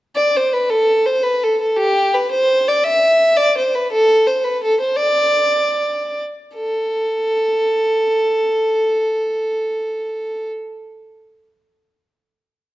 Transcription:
fiddle
0.15 D5
0.36 C5
0.53 B4
0.70 A4
1.06 C5
1.23 B4
1.43 A4
1.60 A4
1.77 G4
2.14 B4
2.31 C5
2.68 D5
2.83 E5
3.37 D5
3.57 C5
3.75 B4
3.92 A4
4.27 C5
4.44 B4
4.63 A4
4.80 C5
4.96 D5
6.55 A4

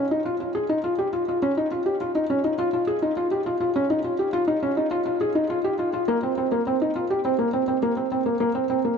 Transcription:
felt piano
0.11 D#4
0.25 F4
0.40 F4
0.55 G#4
0.69 D#4
0.84 F4
0.99 G4
1.13 F4
1.28 F4
1.42 C#4
1.57 D#4
1.71 F4
1.86 G4
2.01 F4
2.15 D#4
2.30 C#4
2.44 D#4
2.58 F4
2.73 F4
2.87 G#4
3.02 D#4
3.17 F4
3.31 G4
3.46 F4
3.60 F4
3.76 C#4
3.90 D#4
4.04 F4
4.19 G4
4.33 F4
4.48 D#4
4.63 C#4
4.77 D#4
4.91 F4
5.05 F4
5.21 G#4
5.35 D#4
5.50 F4
5.64 G4
5.79 F4
5.93 F4
6.08 A#3
6.23 C4
6.38 C4
6.52 A#3
6.67 C4
6.82 D#4
6.96 F4
7.10 G4
7.25 C4
7.39 A#3
7.53 C4
7.68 C4
7.83 A#3
7.97 C4
8.12 C4
8.26 A#3
8.40 A#3
8.55 C4
8.70 C4
8.85 A#3

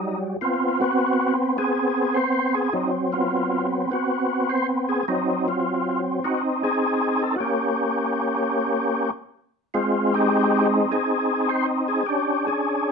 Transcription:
tonewheel organ
Already playing: F#3 G3 D#4
0.41 B3 C4 F4
0.80 B3 C4 F#4
1.58 B3 C4 G#4
2.14 C5
2.54 G#4
2.73 F#3 C4 D#4
3.12 B3 C4 F4
3.91 B3 C4 F#4
4.49 C5
4.89 G#4
5.08 F#3 C4 D#4
5.48 C4 F4
6.24 C4 D#4 F#4
6.63 C4 D#4 G#4
7.22 A4
7.36 F#4
7.40 A#3 C#4 G4
9.74 G#3 C4 F4
10.14 C4 D#4 G4
10.92 C4 D#4 G#4
11.49 C5
11.88 G#4
12.06 C#4 D4 G4
12.47 C#4 D4 G#4

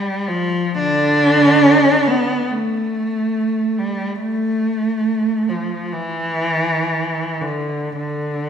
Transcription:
cello
Already playing: G3
0.28 F3
0.78 D3 D4
2.07 B3
2.50 A3
3.79 G3
4.21 A3
5.48 F3
5.93 E3
7.41 D3
7.96 D3

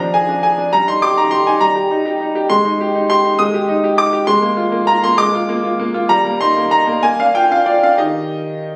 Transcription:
grand piano
Already playing: F3 A#5
0.00 D4
0.14 G#4 G#5
0.29 D4
0.43 G#4 G#5
0.58 D4
0.73 G3 A#5
0.88 D#4 C6
1.02 G4 D6
1.18 D#4 A#5
1.31 G4 C6
1.46 D#4 G#5
1.61 G3 A#5
1.76 G4
1.91 D#4
2.05 G4
2.20 D#4
2.35 G4
2.50 G#3 C6
2.65 D#4
2.81 G4
2.95 D#4
3.10 G4 C6
3.24 D#4
3.39 G#3 D#6
3.54 G4
3.69 D#4
3.84 G4
3.98 D#4 D6
4.13 G4
4.27 G#3 C6
4.42 A#3
4.57 F4
4.72 A#3
4.87 F4 A#5
5.03 A#3 C6
5.18 G#3 D6
5.34 F4
5.49 A#3
5.64 F4
5.79 A#3
5.94 F4
6.09 G3 A#5
6.25 A#3
6.41 D#4 C6
6.57 A#3
6.71 D#4 A#5
6.87 A#3
7.03 A#3 G#5
7.19 D4 F5
7.35 F4 G5
7.51 D4 F5
7.66 F4 D5
7.83 D4 F5
7.98 D#3 D#4 G4 D#5

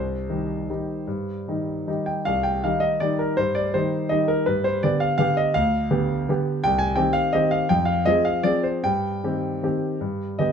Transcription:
grand piano
Already playing: C2 C5
0.29 D#3 G3 D#4
0.70 D#3 G3 D#4
1.07 G2
1.48 D#3 G3 D#4
1.88 D#3 G3 D#4
2.06 G5
2.25 C2 F5
2.43 G5
2.64 D#3 G3 D#4 F5
2.80 D#5
3.00 D#3 G3 D#4 D5
3.19 A#4
3.37 G2 C5
3.55 D5
3.74 D#3 G3 D#4 C5
4.09 D#3 G3 D#4 D#5
4.28 A#4
4.46 G2 B4
4.64 C5
4.83 D3 B3 G4 D5
5.00 F5
5.18 D3 B3 G4 F5
5.37 D#5
5.54 D2 F5
5.91 D3 B3 G4
6.29 D3 B3 G4
6.64 C2 G5
6.79 G#5
6.96 D#3 C4 G4 G5
7.13 F5
7.33 D#3 C4 G4 D#5
7.51 F5
7.69 F2 G5
7.85 F5
8.06 F3 C4 G#4 D#5
8.25 F5
8.43 F3 C4 G#4 D5
8.63 C5
8.84 G2 G5
9.24 D#3 C4 G4
9.63 D#3 C4 G4
10.01 G2
10.39 D3 B3 G4 D#5

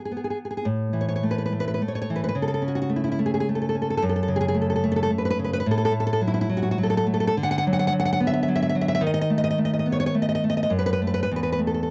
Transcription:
nylon-string guitar
Already playing: B3
0.05 G#4
0.11 B3
0.17 G#4
0.24 G#4
0.30 G#4
0.45 G#4
0.51 G#4
0.57 G#4
0.65 A2
0.93 E3
1.01 C#5
1.09 C#5
1.16 C#5
1.23 A3
1.31 B4
1.38 B4
1.46 B4
1.52 A3
1.60 B4
1.68 B4
1.74 B4
1.82 A3
1.88 C#5
1.95 C#5
2.02 C#5
2.10 E3
2.16 B4
2.24 B4
2.29 B4
2.35 C#3
2.42 A4
2.48 A4
2.54 A4
2.62 C#4
2.68 F#4
2.75 F#4
2.82 F#4
2.89 A3
2.96 E4
3.04 E4
3.12 E4
3.19 A3
3.26 G#4
3.34 G#4
3.40 G#4
3.49 A3
3.55 A4
3.62 A4
3.69 A4
3.75 C#4
3.82 A4
3.90 A4
3.97 A4
4.02 F#2
4.09 A4
4.16 A4
4.23 A4
4.28 C#3
4.36 G#4
4.41 G#4
4.48 G#4
4.54 A3
4.62 A4
4.70 A4
4.76 A4
4.84 A3
4.92 A4
4.96 A4
5.03 A4
5.10 A3
5.18 B4
5.25 B4
5.30 B4
5.39 C#3
5.44 B4
5.53 B4
5.60 B4
5.66 A2
5.71 A4
5.78 A4
5.85 A4
5.92 A3
6.00 A4
6.07 A4
6.13 A4
6.21 F#3
6.28 E4
6.34 E4
6.41 E4
6.49 F#3
6.57 F#4
6.62 F#4
6.71 F#4
6.78 F#3
6.83 A4
6.90 A4
6.97 A4
7.07 A3
7.14 A4
7.20 A4
7.27 A4
7.37 D3
7.43 F#5
7.51 F#5
7.58 F#5
7.67 F#3
7.73 F#5
7.79 F#5
7.87 F#5
7.92 F#3
8.00 F#5
8.05 F#5
8.13 F#5
8.20 B3
8.27 E5
8.34 E5
8.43 E5
8.48 F#3
8.55 E5
8.63 E5
8.69 E5
8.75 F#3
8.81 E5
8.88 E5
8.95 E5
9.01 D#3
9.07 D#5
9.14 D#5
9.21 D#5
9.30 A3
9.38 D#5
9.44 D#5
9.51 D#5
9.58 A3
9.65 D#5
9.73 D#5
9.79 D#5
9.86 B3
9.92 C#5
10.00 C#5
10.06 C#5
10.15 A3
10.22 D#5
10.29 D#5
10.35 D#5
10.44 A3
10.50 D#5
10.57 D#5
10.63 D#5
10.70 F#2
10.79 B4
10.86 B4
10.93 B4
11.02 A3
11.07 B4
11.14 B4
11.23 B4
11.31 E2
11.36 B4
11.43 B4
11.52 B4
11.59 A3
11.67 A4
11.74 A4
11.83 A4

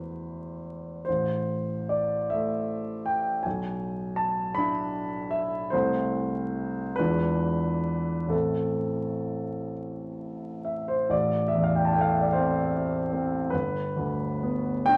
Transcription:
grand piano
Already playing: E2 E3 G#3 E4 B4 C5
1.05 A1 C5
1.89 D5
2.30 A3 E4 E5
3.06 G5
3.43 B1 G#5
4.16 A5
4.55 D4 E4 B5
5.31 E5
5.70 C2 A3 C4 E4 C5
6.96 E2 G#3 D4 F4 B4
8.27 A1 A3 C4 A4
8.32 E4
10.65 E5
10.88 C5
11.09 A1 D5
11.48 E5
11.55 E2
11.64 F5
11.76 G5
11.85 A5
11.93 A3 G5
12.01 F5
12.11 E5
12.21 D5
12.33 C4 C5
12.75 E4
13.13 C4
13.50 G1 B4
13.96 D2
14.43 B3
14.86 D4 G5

